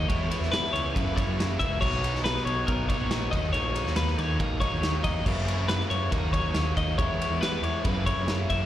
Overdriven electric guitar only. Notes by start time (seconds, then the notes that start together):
0.09 E3 G#3 B3 E4
0.30 G#3 B3 E4
0.52 E3 G#3 B3 E4
0.95 F#2 C#3 E3 A#3 E4
1.16 E3 A#3 E4
1.38 C#3 E3 A#3 E4
1.59 E3 A#3 E4
1.81 B2 F#3 B3 D#4
2.03 F#3 B3 D#4
2.24 B2 F#3 B3 D#4
2.89 F#3 B3 D#4
3.11 B2 F#3 B3 D#4
3.33 D#3 F#3 A#3 D#4
3.53 D#3 F#3 A#3 D#4
3.75 F#3 A#3 D#4
3.97 D#3 F#3 A#3 D#4
4.62 F#3 A#3 D#4
4.82 D#3 F#3 A#3 D#4
5.04 F#3 A#3 D#4
5.25 F#2 C#3 E3 A#3 E4
5.47 E3 A#3 E4
5.68 F#2 C#3 E3 A#3 E4
6.11 D#3 F#3 A#3 D#4
6.33 F#3 A#3 D#4
6.55 D#3 F#3 A#3 D#4
6.76 F#3 A#3 D#4
6.99 E3 G#3 B3 E4
7.20 G#3 B3 E4
7.41 E3 G#3 B3 E4
7.84 F#2 C#3 E3 A#3 E4
8.06 E3 A#3 E4
8.28 C#3 E3 A#3 E4
8.50 E3 A#3 E4